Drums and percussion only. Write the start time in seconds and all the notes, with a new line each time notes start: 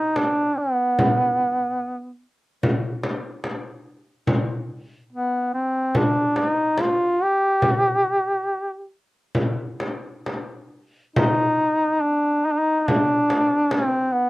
0.16 frame drum
0.99 frame drum
2.63 frame drum
3.03 frame drum
3.44 frame drum
4.27 frame drum
5.95 frame drum
6.36 frame drum
6.78 frame drum
7.62 frame drum
9.35 frame drum
9.80 frame drum
10.26 frame drum
11.16 frame drum
12.88 frame drum
13.30 frame drum
13.71 frame drum